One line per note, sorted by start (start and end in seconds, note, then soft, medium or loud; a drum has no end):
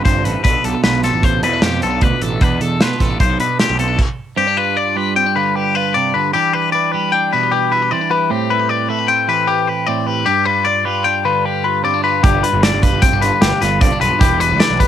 0.00 0.43 D3 medium
0.00 0.45 G3 medium
0.00 0.47 F4 soft
0.00 0.25 A4 soft
0.05 0.23 G1 medium
0.05 0.44 G2 medium
0.05 0.45 C4 medium
0.05 0.24 C5 medium
0.05 kick medium
0.05 snare soft
0.05 closed hi-hat medium
0.24 0.34 A1 medium
0.24 0.48 A4 soft
0.24 0.43 B4 medium
0.24 closed hi-hat medium
0.44 0.54 B1 loud
0.44 1.42 B2 medium
0.44 1.04 B3 medium
0.44 1.05 D4 medium
0.44 0.85 F4 medium
0.44 0.65 B4 medium
0.44 kick medium
0.44 closed hi-hat medium
0.48 0.65 A4 medium
0.64 0.73 B1 medium
0.64 0.75 G4 medium
0.64 0.83 A4 medium
0.64 closed hi-hat medium
0.75 1.23 A4 soft
0.84 1.10 B1 medium
0.84 1.62 F4 medium
0.84 1.04 B4 medium
0.84 snare loud
0.84 closed hi-hat medium
1.03 2.40 B3 medium
1.03 1.14 C4 soft
1.03 1.24 A4 medium
1.03 snare soft
1.03 closed hi-hat medium
1.14 1.43 A1 medium
1.14 1.42 D4 soft
1.23 2.20 A4 soft
1.23 1.43 C5 medium
1.23 kick medium
1.23 closed hi-hat medium
1.42 1.61 E2 medium
1.42 1.99 B2 medium
1.42 1.53 C4 soft
1.42 1.62 B4 medium
1.42 closed hi-hat medium
1.53 1.81 D4 soft
1.62 1.80 F2 medium
1.62 2.39 F4 soft
1.62 1.82 G4 medium
1.62 snare loud
1.62 closed hi-hat medium
1.81 2.00 B1 medium
1.81 1.91 C4 medium
1.81 2.02 A4 medium
1.81 closed hi-hat medium
1.91 2.00 D4 soft
2.00 2.11 D2 medium
2.00 2.38 B2 medium
2.00 2.39 D4 medium
2.00 2.22 B4 medium
2.00 kick medium
2.00 closed hi-hat medium
2.21 2.40 A1 medium
2.21 2.39 A4 soft
2.21 2.42 A4 medium
2.21 closed hi-hat medium
2.41 2.59 E2 loud
2.41 3.38 B2 medium
2.41 3.00 D4 medium
2.41 2.61 B4 medium
2.41 kick medium
2.41 closed hi-hat medium
2.61 2.82 E2 medium
2.61 2.82 A4 medium
2.61 3.19 A4 medium
2.61 closed hi-hat medium
2.81 2.90 B2 medium
2.81 3.58 F4 medium
2.81 3.01 B4 medium
2.81 snare medium
2.81 closed hi-hat medium
2.99 3.18 A1 medium
2.99 3.96 B3 medium
2.99 3.10 C4 soft
2.99 3.20 A4 medium
2.99 kick medium
2.99 snare soft
2.99 closed hi-hat medium
3.10 3.38 D4 soft
3.20 3.38 B1 medium
3.20 3.30 G4 medium
3.20 3.40 C5 medium
3.20 kick medium
3.20 closed hi-hat medium
3.30 3.99 A4 soft
3.39 3.96 B2 medium
3.39 3.77 D4 soft
3.39 3.60 B4 medium
3.39 closed hi-hat medium
3.59 3.96 F4 soft
3.59 3.79 G4 medium
3.59 snare medium
3.59 closed hi-hat medium
3.70 3.96 B1 medium
3.77 3.88 C4 medium
3.77 3.99 A4 medium
3.77 closed hi-hat medium
3.88 3.98 D4 soft
3.99 kick medium
3.99 crash medium
4.37 6.34 G2 medium
4.37 4.47 C4 medium
4.37 4.57 G4 medium
4.47 5.16 D4 medium
4.57 4.95 F4 medium
4.57 4.77 B4 medium
4.77 4.97 D5 medium
4.77 5.56 D5 medium
4.96 6.93 G3 medium
4.96 5.36 F4 medium
4.96 5.16 B4 medium
5.16 5.26 C4 medium
5.16 5.36 G5 medium
5.26 6.34 D4 soft
5.36 5.95 D3 medium
5.36 5.75 F4 medium
5.36 5.55 B4 medium
5.55 5.75 G4 medium
5.55 6.74 B4 medium
5.75 6.32 F4 medium
5.75 5.95 B4 medium
5.94 6.15 C3 medium
5.94 6.14 D5 medium
6.14 6.34 D3 medium
6.14 6.33 B4 medium
6.33 7.91 E3 medium
6.33 7.14 D4 medium
6.33 6.53 G4 loud
6.53 6.94 G4 medium
6.53 6.72 B4 medium
6.72 7.52 B4 medium
6.72 6.92 D5 medium
6.92 8.89 G3 medium
6.92 7.33 G4 medium
6.92 7.12 B4 medium
7.12 7.92 D4 medium
7.12 7.32 G5 medium
7.33 7.92 B2 medium
7.33 7.43 E4 soft
7.33 7.52 B4 medium
7.43 7.72 G4 soft
7.52 7.71 G4 medium
7.52 8.33 B4 medium
7.72 7.82 E4 medium
7.72 7.91 B4 medium
7.82 8.11 G4 soft
7.91 8.28 E3 medium
7.91 8.01 C4 medium
7.91 8.11 D5 medium
8.01 8.30 D4 soft
8.11 8.33 G4 medium
8.11 8.31 B4 medium
8.30 9.86 A2 medium
8.30 9.07 C4 medium
8.30 8.50 G4 loud
8.50 8.59 E4 medium
8.50 8.69 B4 medium
8.59 8.89 G4 soft
8.69 9.47 B4 medium
8.69 8.89 D5 medium
8.89 10.29 A3 medium
8.89 8.99 E4 soft
8.89 9.09 B4 medium
8.99 9.27 G4 soft
9.08 9.87 C4 medium
9.08 9.28 G5 medium
9.28 10.24 E3 medium
9.28 9.68 G4 medium
9.28 9.48 B4 medium
9.47 9.68 G4 medium
9.47 10.50 B4 medium
9.67 10.07 G4 medium
9.67 9.87 B4 medium
9.87 10.25 A2 medium
9.87 10.27 C4 medium
9.87 10.07 D5 medium
10.07 10.46 G4 medium
10.07 10.27 B4 medium
10.26 11.83 G2 medium
10.26 11.05 D4 medium
10.26 10.46 G4 medium
10.46 10.86 F4 medium
10.46 10.66 B4 medium
10.65 10.85 D5 medium
10.65 11.45 D5 medium
10.85 12.82 G3 medium
10.85 11.25 F4 medium
10.85 11.05 B4 medium
11.04 11.83 D4 medium
11.04 11.25 G5 medium
11.24 12.21 D3 medium
11.24 11.63 F4 medium
11.24 11.45 B4 medium
11.45 11.65 G4 medium
11.45 12.47 B4 soft
11.64 12.03 F4 medium
11.64 11.84 B4 medium
11.84 12.22 G2 medium
11.84 11.94 C4 medium
11.84 12.03 D5 medium
11.94 12.22 D4 soft
12.04 12.21 F4 soft
12.04 12.24 B4 medium
12.23 12.41 G1 loud
12.23 13.81 G2 medium
12.23 13.01 D4 medium
12.23 12.43 G4 medium
12.23 kick loud
12.23 closed hi-hat medium
12.43 12.81 F4 medium
12.43 12.63 B4 medium
12.43 closed hi-hat medium
12.53 12.71 G1 loud
12.63 12.83 D5 medium
12.63 13.44 D5 medium
12.63 snare medium
12.63 closed hi-hat medium
12.74 12.82 G1 medium
12.82 14.22 G3 medium
12.82 13.22 F4 medium
12.82 13.02 B4 medium
12.82 kick medium
12.82 closed hi-hat medium
12.93 13.01 G1 medium
13.02 13.13 C4 medium
13.02 13.22 G5 medium
13.02 kick loud
13.02 snare soft
13.02 closed hi-hat loud
13.13 13.30 G1 medium
13.13 13.82 D4 soft
13.22 14.19 D3 medium
13.22 13.63 F4 medium
13.22 13.42 B4 medium
13.22 closed hi-hat medium
13.41 13.51 G1 medium
13.41 13.61 G4 medium
13.41 14.24 B4 medium
13.41 snare loud
13.41 closed hi-hat medium
13.61 13.79 G1 loud
13.61 14.01 F4 medium
13.61 13.81 B4 medium
13.61 snare soft
13.61 closed hi-hat medium
13.81 13.90 G1 medium
13.81 14.21 G2 medium
13.81 13.92 C4 medium
13.81 14.01 D5 medium
13.81 kick loud
13.81 closed hi-hat medium
13.92 14.21 D4 soft
14.01 14.10 B1 medium
14.01 14.19 F4 medium
14.01 14.21 B4 medium
14.01 closed hi-hat medium
14.21 14.52 E1 loud
14.21 14.88 E3 medium
14.21 14.79 G3 medium
14.21 14.88 D4 medium
14.21 14.40 G4 medium
14.21 14.61 B4 medium
14.21 kick medium
14.21 closed hi-hat medium
14.40 14.79 G4 medium
14.40 14.60 B4 medium
14.40 closed hi-hat medium
14.51 14.59 D2 medium
14.60 14.88 B4 medium
14.60 14.79 D5 medium
14.60 snare loud
14.60 closed hi-hat medium
14.70 14.79 B1 medium
14.79 14.88 G3 medium
14.79 14.88 G4 medium
14.79 14.88 B4 medium
14.79 kick medium
14.79 closed hi-hat medium